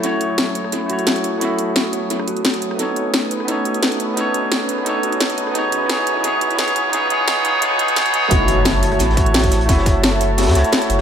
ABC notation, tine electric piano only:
X:1
M:4/4
L:1/8
Q:1/4=174
K:F#dor
V:1 name="Tine electric piano"
[A,EFc]4- [A,EFc] [A,EFc]3 | [A,EFe]4- [A,EFe] z3 | [B,DAc]4 [B,DAc]4 | [B,DAc]4 [B,DAc]4 |
[B,DGc]2 [B,DGc]2 [B,DGc]2 [B,DGc]2 | [B,DGc] [B,DGc] [B,DGc] [B,DGc] [B,DGc] [B,DGc] [B,DGc] [B,DGc] | [A,EFc]4- [A,EFc] [A,EFc]3 | [A,EFe]4- [A,EFe] [A,EFc]3 |]